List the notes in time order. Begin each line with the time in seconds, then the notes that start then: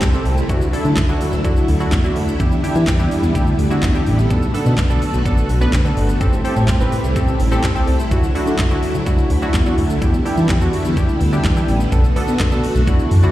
Already playing: C3 G3 A3 E4, downlifter
0.01 C2, kick, snare, clap, closed hi-hat, shaker
0.13 C4 G4 A4, shaker
0.25 C2, open hi-hat, shaker
0.38 shaker
0.49 D2 D3 F#3 D4 E4 F#4, kick, closed hi-hat, shaker
0.61 shaker
0.73 D4 E4 A4, open hi-hat, shaker
0.85 D3, shaker
0.96 kick, snare, clap, closed hi-hat, shaker
1.09 D2 D4 E4 F#4, shaker
1.21 open hi-hat, shaker
1.33 D2, shaker
1.44 C2 D4 E4 F#4, kick, closed hi-hat, shaker
1.56 shaker
1.68 D2, open hi-hat, shaker
1.80 D4 E4 F#4, shaker
1.91 E2, kick, snare, clap, closed hi-hat, shaker
2.04 D4 E4 F#4, shaker
2.16 D2, open hi-hat, shaker
2.28 shaker
2.40 E2 G3 B3 D4 E4 G4, kick, closed hi-hat, shaker
2.52 shaker
2.63 D4 E4 G4, open hi-hat, shaker
2.75 E3, shaker
2.86 kick, snare, clap, closed hi-hat, shaker
2.99 E2 D4 E4 G4, shaker
3.11 open hi-hat, shaker
3.23 E2, shaker
3.35 D2 D4 E4 G4, kick, closed hi-hat, shaker
3.47 shaker
3.59 D2, open hi-hat, shaker
3.71 D4 E4 F#4, shaker
3.82 E2, kick, snare, clap, closed hi-hat, shaker
3.94 D4 E4 G4, shaker
4.06 A1, open hi-hat, shaker
4.19 shaker
4.30 B1 A3 B3 D4 F#4 A4, kick, closed hi-hat, shaker
4.42 shaker
4.54 B3 D4 A4, open hi-hat, shaker
4.66 B2, shaker
4.77 kick, snare, clap, closed hi-hat, shaker
4.90 B1 B3 D4 A4, shaker
5.02 open hi-hat, shaker
5.14 B1, shaker
5.25 A1 B3 D4 A4, kick, closed hi-hat, shaker
5.38 shaker
5.49 B1, open hi-hat, shaker
5.61 B3 D4 B4, shaker
5.73 D2, kick, snare, clap, closed hi-hat, shaker
5.85 B3 D4 A4, shaker
5.97 G1, open hi-hat, shaker
6.09 shaker
6.21 A1 C3 G3 C4 E4 G4 A4, kick, closed hi-hat, shaker
6.33 shaker
6.44 C4 G4 A4, open hi-hat, shaker
6.56 A2, shaker
6.67 kick, snare, clap, closed hi-hat, shaker
6.80 A1 C4 G4 B4, shaker
6.92 open hi-hat, shaker
7.04 C2, shaker
7.16 A1 C4 G4 A4, kick, closed hi-hat, shaker
7.28 shaker
7.40 A1, open hi-hat, shaker
7.51 C4 G4 A4, shaker
7.63 C2, kick, snare, clap, closed hi-hat, shaker
7.75 C4 G4 A4, shaker
7.87 C2, open hi-hat, shaker
7.99 shaker
8.11 D2 D3 F#3 D4 E4 F#4, kick, closed hi-hat, shaker
8.23 shaker
8.35 D4 E4 F#4, open hi-hat, shaker
8.47 D3, shaker
8.58 kick, snare, clap, closed hi-hat, shaker
8.71 D2 D4 E4 F#4, shaker
8.83 open hi-hat, shaker
8.94 D2, shaker
9.06 C2 D4 E4 F#4, kick, closed hi-hat, shaker
9.18 shaker
9.30 D2, open hi-hat, shaker
9.42 D4 E4 F#4, shaker
9.53 E2, kick, snare, clap, closed hi-hat, shaker
9.66 D4 E4 F#4, shaker
9.78 D2, open hi-hat, shaker
9.90 shaker
10.02 E2 G3 B3 D4 E4 G4, kick, closed hi-hat, shaker
10.14 shaker
10.25 D4 E4 G4, open hi-hat, shaker
10.37 E3, shaker
10.48 kick, snare, clap, closed hi-hat, shaker
10.61 E2 D4 E4 F#4, shaker
10.73 open hi-hat, shaker
10.85 E2, shaker
10.97 D2 D4 E4 G4, kick, closed hi-hat, shaker
11.09 shaker
11.21 D2, open hi-hat, shaker
11.33 D4 E4 G4, shaker
11.44 E2, kick, snare, clap, closed hi-hat, shaker
11.56 D4 E4 G4, shaker
11.68 A1, open hi-hat, shaker
11.80 shaker
11.92 B1 A3 B3 D4 F#4 A4, kick, closed hi-hat, shaker
12.04 shaker
12.16 B3 D4 A4, open hi-hat, shaker
12.28 B2, shaker
12.39 kick, snare, clap, closed hi-hat, shaker
12.52 B1 B3 D4 A4, shaker
12.64 open hi-hat, shaker
12.75 B1, shaker
12.87 D2 E3 D4 E4 F#4, kick, closed hi-hat, shaker
12.99 E2, shaker
13.11 F#2, open hi-hat, shaker
13.23 D2 D4 E4 F#4, shaker